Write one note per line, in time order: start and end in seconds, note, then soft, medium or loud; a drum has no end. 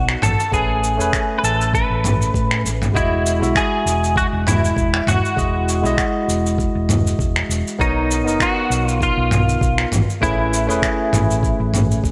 0.00 0.14 B1 medium
0.00 0.24 B3 medium
0.00 0.24 D#4 medium
0.00 0.23 F#4 medium
0.00 0.23 A#4 medium
0.00 0.24 C#5 loud
0.00 0.22 D#5 medium
0.09 finger snap medium
0.22 0.34 A1 medium
0.22 0.53 A4 medium
0.22 mid tom medium
0.22 shaker medium
0.40 shaker soft
0.51 1.00 A1 medium
0.51 0.95 A3 medium
0.51 0.95 C#4 medium
0.51 0.96 G#4 medium
0.51 1.38 G#4 loud
0.51 0.96 B4 loud
0.51 kick loud
0.51 shaker soft
0.84 shaker medium
0.97 1.09 E1 medium
0.97 2.90 A3 medium
0.97 2.91 C#4 medium
0.97 2.92 B4 medium
0.97 2.92 G#5 medium
0.97 shaker soft
1.13 finger snap medium
1.13 kick loud
1.13 shaker soft
1.38 1.44 B4 medium
1.43 1.82 A1 medium
1.43 1.74 A4 medium
1.43 shaker medium
1.61 shaker soft
1.74 2.61 B4 loud
1.74 kick loud
1.74 shaker soft
1.90 2.28 A1 medium
2.04 mid tom medium
2.04 shaker medium
2.22 shaker soft
2.34 2.66 A2 medium
2.34 kick loud
2.34 shaker soft
2.51 finger snap medium
2.65 2.87 A1 medium
2.65 shaker medium
2.82 mid tom medium
2.82 shaker soft
2.93 3.42 E1 loud
2.93 3.37 G#3 medium
2.93 3.37 E4 medium
2.93 3.58 E4 medium
2.93 3.38 F#4 medium
2.93 3.38 D#5 medium
2.93 kick medium
2.93 shaker soft
3.26 shaker medium
3.40 3.51 B1 medium
3.40 5.33 G#3 medium
3.40 5.34 E4 medium
3.40 5.34 F#4 medium
3.40 5.35 E5 medium
3.40 shaker soft
3.55 4.17 G#4 loud
3.55 finger snap medium
3.55 kick loud
3.55 shaker soft
3.86 4.25 E1 medium
3.86 shaker medium
4.04 shaker soft
4.16 4.25 F#4 loud
4.16 kick loud
4.16 shaker soft
4.33 4.70 E1 medium
4.47 5.09 E4 loud
4.47 mid tom medium
4.47 shaker medium
4.65 shaker soft
4.77 4.99 E1 medium
4.77 kick loud
4.77 shaker soft
4.94 finger snap medium
5.07 5.19 E1 medium
5.07 6.25 F#4 medium
5.07 mid tom medium
5.07 shaker medium
5.25 shaker soft
5.36 5.84 E1 loud
5.36 5.80 G#3 medium
5.36 5.80 E4 medium
5.36 5.80 F#4 medium
5.36 5.81 D#5 medium
5.36 kick loud
5.36 shaker soft
5.69 shaker medium
5.82 5.94 B1 medium
5.82 7.75 G#3 medium
5.82 7.76 E4 medium
5.82 7.77 F#4 medium
5.82 shaker soft
5.86 7.77 D#5 medium
5.98 finger snap medium
5.98 kick loud
5.98 shaker soft
6.28 6.67 E1 medium
6.28 shaker medium
6.46 shaker soft
6.58 kick loud
6.58 shaker soft
6.75 7.13 E1 medium
6.89 mid tom medium
6.89 shaker medium
7.07 shaker soft
7.19 7.41 E1 medium
7.19 kick loud
7.19 shaker soft
7.36 finger snap medium
7.49 7.61 E1 medium
7.49 shaker medium
7.67 shaker soft
7.79 8.26 B1 loud
7.79 8.22 B3 medium
7.79 8.22 D#4 medium
7.79 8.43 D#4 medium
7.79 8.23 A#4 medium
7.79 8.23 C#5 loud
7.79 kick loud
7.79 shaker soft
8.11 shaker medium
8.24 8.36 F#1 medium
8.24 9.89 B3 medium
8.24 9.90 D#4 medium
8.24 9.90 A#4 medium
8.24 shaker soft
8.29 9.91 D#5 medium
8.40 8.86 F#4 loud
8.40 finger snap medium
8.40 kick medium
8.40 shaker soft
8.70 9.09 B1 medium
8.70 shaker medium
8.86 9.03 F4 loud
8.86 shaker soft
9.01 9.89 F4 medium
9.01 kick loud
9.01 shaker soft
9.17 9.55 B1 medium
9.31 mid tom medium
9.31 shaker medium
9.49 shaker soft
9.61 9.84 B1 medium
9.61 kick medium
9.61 shaker soft
9.78 finger snap medium
9.91 10.03 A1 medium
9.91 mid tom medium
9.91 shaker medium
10.10 shaker soft
10.21 10.69 A1 loud
10.21 10.65 A3 medium
10.21 10.65 C#4 medium
10.21 12.00 E4 loud
10.21 10.65 G#4 medium
10.21 10.66 B4 medium
10.21 kick medium
10.21 shaker soft
10.53 shaker medium
10.67 10.79 E1 medium
10.67 12.12 A3 medium
10.67 12.12 C#4 medium
10.67 12.12 G#4 medium
10.67 12.12 B4 medium
10.67 shaker soft
10.82 finger snap medium
10.82 kick medium
10.82 shaker soft
11.13 11.52 A1 medium
11.13 mid tom medium
11.13 shaker medium
11.31 shaker soft
11.43 kick loud
11.43 shaker soft
11.60 11.97 A1 loud
11.74 mid tom medium
11.74 shaker medium
11.91 shaker soft
12.04 12.12 A1 medium
12.04 kick loud
12.04 shaker soft